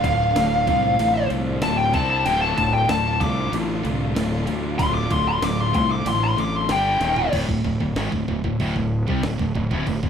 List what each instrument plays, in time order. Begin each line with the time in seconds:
Already playing: distorted electric guitar D2 A2 D3 A3 F4, string section D3 A3 D4 F4
0.03 fingered electric bass D1, distorted electric guitar D2 A2, lead electric guitar F5, kick, ride
0.36 fingered electric bass D1, distorted electric guitar D2 A2, snare, ride
0.67 fingered electric bass C2, distorted electric guitar D2 A2 D3 A3 F4, kick, ride
0.99 fingered electric bass A1, distorted electric guitar D2 A2, ride
1.30 fingered electric bass C2, distorted electric guitar D2 A2, ride
1.62 fingered electric bass D1, distorted electric guitar D2 A2 D3 A3 F4, lead electric guitar A5, snare, ride
1.78 lead electric guitar G5
1.93 fingered electric bass C2, string section C3 G3 C5, distorted electric guitar C3 G3 C4, lead electric guitar A5, kick, ride
2.10 lead electric guitar A5
2.26 fingered electric bass D1, distorted electric guitar D2 A2 D3 A3 F4, string section D3 A3 F4, lead electric guitar G5, ride
2.41 lead electric guitar A5
2.58 fingered electric bass D1, distorted electric guitar D2 A2, lead electric guitar A5, kick, ride
2.73 lead electric guitar G5
2.89 fingered electric bass D1, distorted electric guitar D2 A2, lead electric guitar A5, snare, ride
3.20 fingered electric bass C2, distorted electric guitar D2 A2 D3 A3 F4, lead electric guitar D6, kick, ride
3.53 fingered electric bass A1, distorted electric guitar D2 A2, ride
3.84 fingered electric bass C2, distorted electric guitar D2 A2, ride
4.16 fingered electric bass D1, distorted electric guitar D2 A2 D3 A3 F4, snare, ride
4.47 distorted electric guitar D2 A2, fingered electric bass D2, ride
4.79 fingered electric bass D1, distorted electric guitar D2 A2 D3 A3 F4, lead electric guitar C6, kick, ride
4.94 lead electric guitar D6
5.10 fingered electric bass D1, distorted electric guitar D2 A2, lead electric guitar C6, kick, ride
5.28 lead electric guitar C6
5.42 fingered electric bass D1, distorted electric guitar D2 A2, lead electric guitar D6, snare, ride
5.60 lead electric guitar C6
5.72 fingered electric bass C2, distorted electric guitar D2 A2 D3 A3 F4, lead electric guitar C6, kick, ride
5.91 lead electric guitar D6
6.06 fingered electric bass A1, distorted electric guitar D2 A2, lead electric guitar C6, ride
6.24 lead electric guitar C6
6.37 fingered electric bass A1, distorted electric guitar D2 A2, lead electric guitar D6, ride
6.56 lead electric guitar C6
6.69 fingered electric bass G1, distorted electric guitar G2 D3 G3, string section G3 A4 G5, lead electric guitar G5, snare, ride
7.00 fingered electric bass D#1, distorted electric guitar D#2 A#2 D#3, string section D#3 A#3 F4 D#5, snare, ride
7.16 floor tom
7.33 fingered electric bass D1, distorted electric guitar D2 A2, kick, crash
7.48 fingered electric bass D1, distorted electric guitar D2 A2, kick
7.65 fingered electric bass D1, distorted electric guitar D2 A2, kick
7.80 fingered electric bass D1, distorted electric guitar D2 A2, kick
7.96 fingered electric bass G#1, distorted electric guitar G#2 D#3, snare, crash
8.12 fingered electric bass D1, distorted electric guitar D2 A2, kick
8.28 fingered electric bass D1, distorted electric guitar D2 A2, kick
8.44 fingered electric bass D1, distorted electric guitar D2 A2, kick
8.60 fingered electric bass D1, distorted electric guitar D2 A2, kick, crash
8.76 fingered electric bass D1, distorted electric guitar D2 A2, kick
9.08 fingered electric bass C2, distorted electric guitar C3 G3, kick
9.23 fingered electric bass D1, distorted electric guitar D2 A2, snare, crash
9.39 fingered electric bass D1, distorted electric guitar D2 A2, kick
9.55 fingered electric bass D1, distorted electric guitar D2 A2, kick
9.71 fingered electric bass D1, distorted electric guitar D2 A2, kick
9.87 fingered electric bass D1, distorted electric guitar D2 A2, kick, crash
10.03 fingered electric bass D1, distorted electric guitar D2 A2, kick